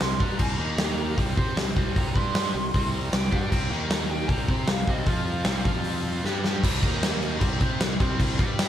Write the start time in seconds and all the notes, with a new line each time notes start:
0.00 C2 C3 G3 C6, snare, open hi-hat
0.20 G2 G3 D4 G4 A#5, kick
0.38 C2 C3 G3 C4, kick, crash
0.42 A#5
0.58 D#2 D#3 A#3 D#4
0.78 snare, open hi-hat
1.18 C2 C3 G3 C4, kick, open hi-hat
1.36 C3 C4 G4 C5, kick
1.56 C2 C3 G3, snare, open hi-hat
1.76 C2 C3 G3 C4, kick
1.96 A#5, kick, open hi-hat
2.15 G2 G3 D4 G4 C6, kick
2.35 snare, open hi-hat
2.54 C2 C3 G3
2.74 C2 C3 G3 C4, kick, open hi-hat
2.95 A#5
3.13 C2 C3 G3 G5, snare, open hi-hat
3.31 G2 G3 D4 G4, kick
3.35 G5
3.50 C2 C3 G3 C4, kick, crash
3.70 D#2 D#3 A#3 D#4, snare
3.90 A#5, snare, open hi-hat
4.11 G5
4.29 C2 C3 G3 C4 A#5, kick, open hi-hat
4.48 C3 C4 G4 C5, kick
4.67 C2 C3 G3 F5, snare, open hi-hat
4.87 C2 C3 G3 C4 D#5, kick
5.06 F2 F3 C4 F4 F5, kick, open hi-hat
5.45 C2 C3 G3 C4, snare, open hi-hat
5.65 F2 F3 C4 F4, kick
5.84 open hi-hat
6.24 G2 G3 D4 G4, snare
6.44 snare
6.63 C2 C3 G3 C4, kick, crash
6.82 D#2 D#3 A#3 D#4, kick, crash
7.03 snare, crash
7.23 crash
7.40 C2 C3 G3 C4, kick, crash
7.59 C3 C4 G4 C5, kick, crash
7.80 C2 C3 G3, snare, crash
8.00 C2 C3 G3 C4, kick, crash
8.20 kick, crash
8.39 G2 G3 D4 G4, kick, crash
8.59 snare, crash